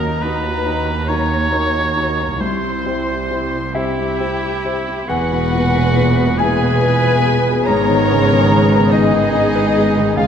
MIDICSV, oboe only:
0, 0, Header, 1, 2, 480
1, 0, Start_track
1, 0, Tempo, 859599
1, 849, Tempo, 887574
1, 1330, Time_signature, 6, 3, 24, 8
1, 3249, Tempo, 843882
1, 5702, End_track
2, 0, Start_track
2, 0, Title_t, "Oboe"
2, 0, Program_c, 0, 68
2, 0, Note_on_c, 0, 70, 90
2, 126, Note_on_c, 0, 71, 98
2, 134, Note_off_c, 0, 70, 0
2, 606, Note_on_c, 0, 73, 118
2, 615, Note_off_c, 0, 71, 0
2, 1329, Note_on_c, 0, 72, 81
2, 1337, Note_off_c, 0, 73, 0
2, 2049, Note_off_c, 0, 72, 0
2, 2052, Note_on_c, 0, 64, 84
2, 2776, Note_on_c, 0, 66, 109
2, 2784, Note_off_c, 0, 64, 0
2, 3490, Note_on_c, 0, 68, 110
2, 3499, Note_off_c, 0, 66, 0
2, 4124, Note_off_c, 0, 68, 0
2, 4221, Note_on_c, 0, 70, 112
2, 4928, Note_on_c, 0, 63, 102
2, 4937, Note_off_c, 0, 70, 0
2, 5643, Note_on_c, 0, 65, 106
2, 5652, Note_off_c, 0, 63, 0
2, 5702, Note_off_c, 0, 65, 0
2, 5702, End_track
0, 0, End_of_file